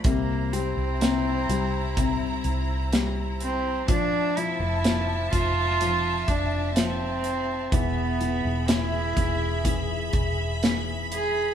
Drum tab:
HH |xxxxxxxx|xxxxxxxx|xxxxxxxx|
SD |--o---o-|--o---o-|--o---o-|
BD |o---o---|o--o-o--|o--ooo--|